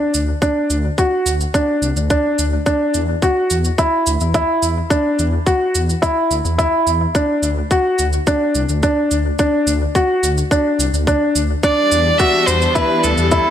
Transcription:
0.00 0.16 D4 medium
0.14 0.34 D2 medium
0.14 shaker medium
0.42 0.73 D4 medium
0.42 kick loud
0.42 shaker soft
0.70 0.90 D2 medium
0.70 shaker medium
0.98 1.29 F#4 medium
0.98 kick medium
0.98 shaker soft
1.26 1.46 D2 medium
1.26 shaker medium
1.41 shaker soft
1.54 1.85 D4 medium
1.54 kick medium
1.54 shaker soft
1.82 1.92 C2 medium
1.82 shaker medium
1.96 2.16 D2 medium
1.96 shaker soft
2.10 2.41 D4 medium
2.10 kick loud
2.10 shaker soft
2.39 2.58 D2 medium
2.39 shaker medium
2.66 2.97 D4 medium
2.66 kick medium
2.66 shaker soft
2.94 3.14 E2 medium
2.94 shaker medium
3.22 3.54 F#4 medium
3.22 kick medium
3.22 shaker soft
3.50 3.70 E2 medium
3.50 shaker medium
3.65 shaker soft
3.78 4.09 E4 medium
3.78 kick medium
3.78 shaker soft
4.07 4.16 D2 medium
4.07 shaker medium
4.20 4.40 E2 medium
4.20 shaker soft
4.34 4.65 E4 medium
4.34 kick medium
4.34 shaker soft
4.63 4.82 E2 medium
4.63 shaker soft
4.90 5.21 D4 medium
4.90 kick medium
4.90 shaker soft
5.19 5.38 E2 medium
5.19 shaker soft
5.46 5.77 F#4 medium
5.46 kick medium
5.46 shaker soft
5.75 5.95 E2 medium
5.75 shaker medium
5.89 shaker soft
6.02 6.33 E4 medium
6.02 kick medium
6.02 shaker soft
6.31 6.41 D2 medium
6.31 shaker medium
6.45 6.64 E2 medium
6.45 shaker soft
6.58 6.89 E4 medium
6.58 kick medium
6.58 shaker soft
6.87 7.06 E2 medium
6.87 shaker soft
7.15 7.46 D4 medium
7.15 kick medium
7.15 shaker soft
7.43 7.62 D2 medium
7.43 shaker medium
7.71 8.02 F#4 medium
7.71 kick medium
7.71 shaker soft
7.99 8.19 D2 medium
7.99 shaker soft
8.13 shaker soft
8.27 8.58 D4 medium
8.27 kick medium
8.27 shaker soft
8.55 8.65 C2 medium
8.55 shaker medium
8.69 8.89 D2 medium
8.69 shaker soft
8.83 9.14 D4 medium
8.83 kick medium
8.83 shaker soft
9.11 9.31 D2 medium
9.11 shaker soft
9.39 9.70 D4 medium
9.39 kick medium
9.39 shaker soft
9.67 9.87 D2 medium
9.67 shaker medium
9.95 10.26 F#4 medium
9.95 kick medium
9.95 shaker soft
10.23 10.43 D2 medium
10.23 shaker medium
10.38 shaker soft
10.51 10.82 D4 medium
10.51 kick medium
10.51 shaker soft
10.79 10.89 C2 medium
10.79 shaker medium
10.93 11.13 D2 medium
10.93 shaker soft
11.07 11.38 D4 medium
11.07 kick medium
11.07 shaker soft
11.35 11.55 D2 medium
11.35 shaker medium
11.63 13.50 E3 medium
11.63 13.50 G3 medium
11.63 13.50 B3 medium
11.63 13.50 D4 medium
11.63 11.94 D4 medium
11.63 12.19 D5 loud
11.63 kick medium
11.63 shaker soft
11.92 12.11 E2 medium
11.92 shaker medium
12.18 12.50 F#4 medium
12.18 12.48 E5 loud
12.18 kick medium
12.18 shaker soft
12.47 12.67 E2 medium
12.47 12.75 C5 medium
12.47 shaker medium
12.62 shaker soft
12.74 13.06 E4 medium
12.74 13.04 B4 medium
12.74 kick medium
12.74 shaker soft
13.03 13.14 D2 medium
13.03 13.50 A4 medium
13.03 shaker medium
13.18 13.38 E2 medium
13.18 shaker soft
13.31 13.50 E4 medium
13.31 kick medium
13.31 shaker soft

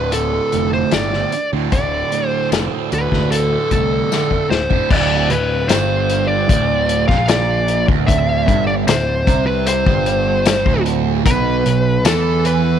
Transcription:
0.00 0.38 D1 medium
0.00 0.52 D2 medium
0.00 0.34 A2 medium
0.00 0.32 D3 medium
0.00 0.13 B4 medium
0.12 0.69 A4 medium
0.12 closed hi-hat medium
0.32 0.52 A2 medium
0.32 0.55 D3 medium
0.52 0.83 F1 medium
0.52 0.92 D2 medium
0.52 0.93 A2 medium
0.52 0.95 D3 medium
0.52 closed hi-hat medium
0.73 0.91 C5 medium
0.91 1.23 G1 loud
0.91 1.33 D2 medium
0.91 1.15 A2 medium
0.91 1.13 D3 medium
0.91 1.48 D5 loud
0.91 snare loud
0.91 closed hi-hat medium
0.91 tambourine medium
1.13 1.32 A2 medium
1.13 1.34 D3 medium
1.13 snare soft
1.32 muted distorted electric guitar stroke soft
1.32 closed hi-hat medium
1.52 1.68 D2 medium
1.52 1.72 A2 medium
1.52 1.73 D3 medium
1.71 2.02 D1 loud
1.71 2.10 D2 medium
1.71 2.11 A2 loud
1.71 2.13 D3 loud
1.71 2.28 D5 medium
1.71 kick loud
1.71 closed hi-hat medium
2.11 2.50 D2 medium
2.11 2.51 A2 medium
2.11 2.52 D3 medium
2.11 closed hi-hat medium
2.28 2.48 C5 medium
2.51 2.67 F1 medium
2.51 2.89 D2 medium
2.51 2.72 A2 medium
2.51 2.69 D3 loud
2.51 snare medium
2.51 closed hi-hat medium
2.51 tambourine medium
2.70 2.91 A2 medium
2.70 2.92 D3 medium
2.90 3.50 D2 medium
2.90 3.07 D2 medium
2.90 3.12 A2 medium
2.90 3.09 D3 medium
2.90 3.30 B4 medium
2.90 closed hi-hat medium
3.10 3.56 D2 loud
3.10 3.52 A2 medium
3.10 3.49 D3 medium
3.10 kick medium
3.10 snare soft
3.31 3.71 A4 medium
3.31 closed hi-hat medium
3.50 3.70 A2 medium
3.50 3.72 D3 medium
3.70 4.01 C2 medium
3.70 4.08 D2 medium
3.70 4.10 A2 medium
3.70 4.11 D3 medium
3.70 4.50 A4 medium
3.70 kick medium
3.70 closed hi-hat medium
4.10 4.48 D2 medium
4.10 4.31 A2 medium
4.10 4.28 D3 medium
4.10 snare medium
4.10 tambourine loud
4.29 4.48 A2 medium
4.29 4.49 D3 medium
4.29 kick medium
4.49 4.66 D1 medium
4.49 4.87 C5 medium
4.49 muted distorted electric guitar stroke soft
4.49 snare medium
4.69 4.89 A2 medium
4.69 4.87 D3 medium
4.69 kick medium
4.90 5.27 D1 medium
4.90 5.29 D2 loud
4.90 5.32 D5 medium
4.90 kick loud
4.90 crash loud
5.30 5.67 D1 medium
5.30 5.62 D2 medium
5.30 5.68 B4 medium
5.30 closed hi-hat medium
5.69 6.45 G1 medium
5.69 6.48 G2 loud
5.69 6.25 C5 medium
5.69 snare loud
5.69 closed hi-hat medium
5.69 tambourine loud
6.10 closed hi-hat medium
6.28 7.04 D5 loud
6.49 7.05 D1 loud
6.49 7.08 D2 loud
6.49 kick loud
6.49 closed hi-hat medium
6.89 closed hi-hat medium
7.08 7.84 A#1 medium
7.08 7.87 A#2 medium
7.08 7.28 F5 loud
7.08 kick medium
7.08 snare soft
7.28 7.84 D5 loud
7.28 snare loud
7.28 closed hi-hat medium
7.28 tambourine loud
7.68 closed hi-hat medium
7.88 8.44 D1 loud
7.88 8.47 D2 loud
7.88 kick loud
8.07 8.63 E5 medium
8.07 kick loud
8.07 closed hi-hat medium
8.48 8.85 G1 medium
8.48 8.86 G2 loud
8.48 kick loud
8.48 closed hi-hat medium
8.67 8.72 D5 medium
8.87 9.24 D1 medium
8.87 9.19 D2 medium
8.87 9.43 C5 medium
8.87 snare loud
8.87 closed hi-hat medium
8.87 tambourine loud
9.26 9.83 C2 medium
9.26 9.85 C3 loud
9.26 kick loud
9.26 closed hi-hat medium
9.46 9.65 B4 medium
9.67 10.82 C5 medium
9.67 closed hi-hat loud
9.86 10.62 G1 medium
9.86 10.65 G2 loud
9.86 kick loud
10.06 closed hi-hat medium
10.46 snare loud
10.46 closed hi-hat loud
10.46 tambourine loud
10.66 11.22 D1 loud
10.66 11.24 D2 loud
10.66 kick loud
10.86 closed hi-hat medium
11.25 11.63 B1 medium
11.25 11.64 B2 loud
11.25 12.05 B4 medium
11.25 kick loud
11.25 closed hi-hat loud
11.65 12.03 B1 medium
11.65 11.97 B2 medium
11.65 closed hi-hat medium
12.05 12.79 E2 medium
12.05 12.79 E3 loud
12.05 12.42 A4 medium
12.05 snare loud
12.05 closed hi-hat loud
12.05 tambourine loud
12.45 12.79 B4 medium
12.45 closed hi-hat medium

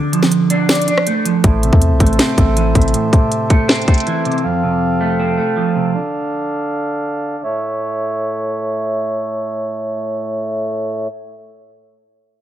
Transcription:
0.00 0.88 D3 medium
0.12 1.06 F3 medium
0.12 closed hi-hat medium
0.23 snare medium
0.32 closed hi-hat medium
0.50 0.87 D4 loud
0.50 closed hi-hat medium
0.69 1.44 D5 medium
0.69 snare loud
0.69 closed hi-hat medium
0.75 closed hi-hat medium
0.81 closed hi-hat medium
0.88 1.44 D4 medium
0.88 closed hi-hat medium
0.98 cross-stick loud
1.07 1.44 A3 medium
1.07 closed hi-hat medium
1.25 1.44 F3 medium
1.25 closed hi-hat medium
1.44 1.72 A1 loud
1.44 2.38 A2 medium
1.44 4.41 A3 medium
1.44 7.40 A4 medium
1.44 4.41 C5 medium
1.44 4.41 E5 medium
1.44 kick loud
1.44 closed hi-hat medium
1.63 2.57 C3 medium
1.63 closed hi-hat medium
1.73 1.93 E2 loud
1.73 kick loud
1.82 closed hi-hat medium
1.91 2.00 C2 loud
2.00 2.18 A1 loud
2.00 2.36 A3 medium
2.00 kick medium
2.00 closed hi-hat medium
2.07 closed hi-hat medium
2.13 closed hi-hat soft
2.19 3.13 C4 medium
2.19 snare loud
2.19 closed hi-hat medium
2.38 2.74 A1 loud
2.38 3.31 A3 medium
2.38 kick medium
2.38 closed hi-hat medium
2.56 3.11 E3 medium
2.56 closed hi-hat medium
2.75 2.93 A1 loud
2.75 2.94 C3 medium
2.75 kick medium
2.75 closed hi-hat medium
2.82 closed hi-hat medium
2.88 closed hi-hat soft
2.94 3.88 A2 medium
2.94 closed hi-hat medium
3.12 4.06 C3 medium
3.12 kick loud
3.12 closed hi-hat medium
3.32 closed hi-hat medium
3.50 3.86 A3 medium
3.50 kick medium
3.50 closed hi-hat medium
3.68 4.44 C4 medium
3.68 snare loud
3.68 closed hi-hat soft
3.75 closed hi-hat soft
3.82 closed hi-hat medium
3.87 4.44 A3 medium
3.87 kick medium
3.87 closed hi-hat medium
3.94 closed hi-hat medium
3.98 closed hi-hat medium
4.00 closed hi-hat medium
4.07 4.44 E3 loud
4.07 closed hi-hat medium
4.25 4.44 C3 medium
4.25 closed hi-hat medium
4.32 closed hi-hat medium
4.38 closed hi-hat soft
4.44 5.38 F2 medium
4.44 5.92 F3 medium
4.44 5.93 C4 medium
4.44 7.41 F5 medium
4.63 5.57 C3 medium
5.01 5.36 A3 medium
5.19 5.94 C4 medium
5.37 5.94 A3 medium
5.57 5.94 F3 medium
5.75 5.94 C3 medium
5.94 7.42 D3 medium
5.94 7.42 D4 medium
7.44 11.07 A2 medium
7.44 11.07 A3 medium
7.44 11.07 C#5 medium
7.44 11.07 E5 medium

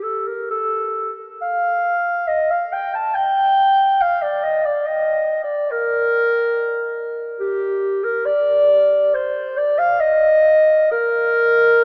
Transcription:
0.03 0.29 A4 medium
0.27 0.50 A#4 medium
0.51 1.13 A4 medium
1.42 2.29 F5 medium
2.28 2.52 D#5 loud
2.51 2.74 F5 medium
2.73 2.94 G5 medium
2.95 3.16 A5 medium
3.14 4.03 G5 loud
4.01 4.23 F5 medium
4.22 4.45 D5 medium
4.44 4.67 D#5 medium
4.66 4.88 D5 medium
4.86 5.42 D#5 medium
5.44 5.72 D5 medium
5.71 7.16 A#4 loud
7.40 8.05 G4 loud
8.03 8.27 A#4 loud
8.25 9.16 D5 loud
9.14 9.59 C5 medium
9.57 9.80 D5 loud
9.78 10.02 F5 loud
10.00 10.91 D#5 loud
10.91 11.84 A#4 loud

